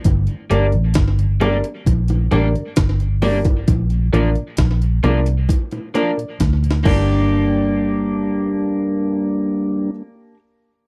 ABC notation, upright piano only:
X:1
M:4/4
L:1/16
Q:1/4=66
K:Gm
V:1 name="Upright piano"
z2 [DGBd] z3 [DGBd] z3 [DGBd] [Bd] z2 [DGBd] [Bd] | z2 [DFBd] z3 [DFBd] z3 [DFBd] [Bd] z2 [DGBd]2- | [DGBd]16 |]